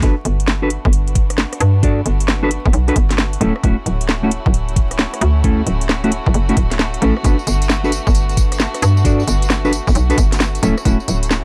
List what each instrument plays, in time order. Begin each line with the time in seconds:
0.02 fm bass G1, violin section A3 B3 D4 F#4, clean electric guitar D4 F#4 A4 B4, kick, closed hi-hat
0.25 fm bass G1, closed hi-hat
0.40 closed hi-hat
0.48 snare
0.62 clean electric guitar D4 F#4 A4 B4
0.70 closed hi-hat
0.85 fm bass G1, kick
0.93 closed hi-hat
1.08 closed hi-hat
1.15 kick, closed hi-hat
1.30 cross-stick, closed hi-hat
1.38 snare
1.53 cross-stick, closed hi-hat
1.60 fm bass G2, closed hi-hat
1.83 clean electric guitar D4 F#4 A4 D5, kick, closed hi-hat
2.06 fm bass G1, closed hi-hat
2.20 closed hi-hat
2.28 cross-stick, snare
2.43 clean electric guitar D4 F#4 A4 B4
2.51 closed hi-hat
2.65 fm bass G1, kick
2.73 fm bass B1, closed hi-hat
2.88 clean electric guitar D4 F#4 A4 B4, closed hi-hat
2.96 fm bass G1, kick, closed hi-hat
3.11 snare, closed hi-hat
3.18 snare
3.33 closed hi-hat
3.41 fm bass D1, clean electric guitar A3 C#4 E4 A4, violin section C#4 E4, closed hi-hat
3.56 cross-stick
3.63 fm bass D1, clean electric guitar A3 C#4 E4 F#4, kick, closed hi-hat
3.86 fm bass D1, closed hi-hat
4.01 closed hi-hat
4.09 snare
4.23 clean electric guitar A3 C#4 E4 F#4
4.31 closed hi-hat
4.46 fm bass D1, kick
4.54 closed hi-hat
4.69 closed hi-hat
4.76 kick, closed hi-hat
4.91 cross-stick, closed hi-hat
4.99 snare
5.14 cross-stick, closed hi-hat
5.21 fm bass D2, closed hi-hat
5.44 clean electric guitar A3 C#4 E4 A4, kick, closed hi-hat
5.67 fm bass D1, closed hi-hat
5.81 closed hi-hat
5.89 cross-stick, snare
6.04 clean electric guitar A3 C#4 E4 F#4, closed hi-hat
6.12 closed hi-hat
6.26 fm bass D1, kick
6.34 fm bass F#1, closed hi-hat
6.49 clean electric guitar A3 C#4 E4 F#4, closed hi-hat
6.57 fm bass D1, kick, closed hi-hat
6.71 snare, closed hi-hat
6.79 snare
6.94 closed hi-hat
7.02 fm bass A1, clean electric guitar A3 C#4 E4 A4, closed hi-hat
7.17 cross-stick
7.24 fm bass G1, violin section B3 D4, clean electric guitar D4 F#4 A4 B4, kick, closed hi-hat, tambourine
7.39 tambourine
7.47 fm bass G1, closed hi-hat, tambourine
7.62 closed hi-hat, tambourine
7.70 snare, tambourine
7.84 clean electric guitar D4 F#4 A4 B4, tambourine
7.92 closed hi-hat, tambourine
8.07 fm bass G1, kick, tambourine
8.15 closed hi-hat, tambourine
8.29 closed hi-hat, tambourine
8.37 kick, closed hi-hat, tambourine
8.52 cross-stick, closed hi-hat, tambourine
8.60 snare, tambourine
8.75 cross-stick, closed hi-hat, tambourine
8.82 fm bass G2, closed hi-hat, tambourine
8.97 tambourine
9.05 clean electric guitar D4 F#4 A4 D5, kick, closed hi-hat, tambourine
9.20 tambourine
9.28 fm bass G1, closed hi-hat, tambourine
9.42 closed hi-hat, tambourine
9.50 cross-stick, snare, tambourine
9.65 clean electric guitar D4 F#4 A4 B4, tambourine
9.73 closed hi-hat, tambourine
9.87 fm bass G1, kick, tambourine
9.95 fm bass B1, closed hi-hat, tambourine
10.10 clean electric guitar D4 F#4 A4 B4, closed hi-hat, tambourine
10.18 fm bass G1, kick, closed hi-hat, tambourine
10.32 snare, closed hi-hat, tambourine
10.40 snare, tambourine
10.55 closed hi-hat, tambourine
10.63 fm bass D1, clean electric guitar A3 C#4 E4 A4, violin section C#4 E4, closed hi-hat, tambourine
10.78 cross-stick, tambourine
10.85 fm bass D1, clean electric guitar A3 C#4 E4 F#4, kick, closed hi-hat, tambourine
11.00 tambourine
11.08 fm bass D1, closed hi-hat, tambourine
11.23 closed hi-hat, tambourine
11.31 snare, tambourine